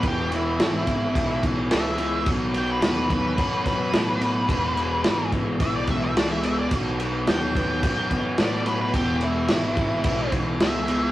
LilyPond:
<<
  \new Staff \with { instrumentName = "Lead electric guitar" } { \time 4/4 \key b \mixolydian \tempo 4 = 108 g'8 e'2 r8 e''4 | r8 g''16 b'4.~ b'16 b'4.~ | b'4. r8 e''16 d''16 e''16 e''16 d''16 e''16 e''16 d''16 | r4 g''2 d''8 b'16 b'16 |
g'8 e'2 r8 e''4 | }
  \new Staff \with { instrumentName = "Overdriven electric guitar" } { \clef bass \time 4/4 \key b \mixolydian <e, b, e>8 <e, b, e>8 <e, b, e>8 <e, b, e>8 <e, b, e>8 <e, b, e>8 <e, b, e>8 <e, b, e>8 | <b, fis b>8 <b, fis b>8 <b, fis b>8 <b, fis b>8 <b, fis b>8 <b, fis b>8 <b, fis b>8 <b, fis b>8 | <e, b, e>8 <e, b, e>8 <e, b, e>8 <e, b, e>8 <e, b, e>8 <e, b, e>8 <e, b, e>8 <e, b, e>8 | <b, fis b>8 <b, fis b>8 <b, fis b>8 <b, fis b>8 <b, fis b>8 <b, fis b>8 <b, fis b>8 <b, fis b>8 |
<e, b, e>8 <e, b, e>8 <e, b, e>8 <e, b, e>8 <e, b, e>8 <e, b, e>8 <e, b, e>8 <e, b, e>8 | }
  \new Staff \with { instrumentName = "Picked electric bass" } { \clef bass \time 4/4 \key b \mixolydian e,,4 gis,,4 b,,4 cis,4 | b,,4 dis,4 fis,4 a,4 | e,,4 gis,,4 b,,4 cis,4 | b,,4 dis,4 fis,4 a,4 |
e,,4 gis,,4 b,,4 cis,4 | }
  \new DrumStaff \with { instrumentName = "Drums" } \drummode { \time 4/4 <cymc bd>8 cymc8 <cymc sn>8 <cymc bd>8 <cymc bd>8 <cymc bd>8 <cymc sn>8 cymc8 | <cymc bd>8 cymc8 <cymc sn>8 <cymc bd>8 <cymc bd>8 <cymc bd>8 <cymc sn>8 cymc8 | <cymc bd>8 cymc8 <cymc sn>8 <cymc bd>8 <cymc bd>8 <cymc bd>8 <cymc sn>8 cymc8 | <cymc bd>8 cymc8 <cymc sn>8 <cymc bd>8 <cymc bd>8 <cymc bd>8 <cymc sn>8 cymc8 |
<cymc bd>8 cymc8 <cymc sn>8 <cymc bd>8 <cymc bd>8 <cymc bd>8 <cymc sn>8 cymc8 | }
>>